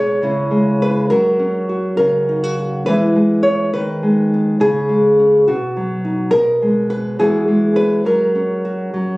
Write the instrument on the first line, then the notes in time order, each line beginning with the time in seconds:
nylon-string guitar
Already playing: B2 G#3 C#5
0.22 C#3 G#3 C#4 E4
0.51 G#3
0.82 B4
1.10 F#3 C#4 F#4 A#4
1.39 C#4
1.69 F#4
1.97 C#3 A#4
2.29 D#4
2.43 F#4
2.59 F#4
2.86 E3 G#3 B3 E4 B4
3.16 G#3
3.43 C#5
3.74 D#3 B4
4.03 G#3
4.34 B3
4.60 C#3 G#4
4.89 G#3
5.19 C#4
5.48 B2 F#4
5.77 F#3
6.05 D#4
6.31 B2 A#4
6.62 G#3
6.90 B4
7.19 E3 G#3 B3 F#4 G#4
7.48 G#3
7.76 B4
8.05 F#3 A#4
8.35 C#4
8.65 F#4
8.94 F#3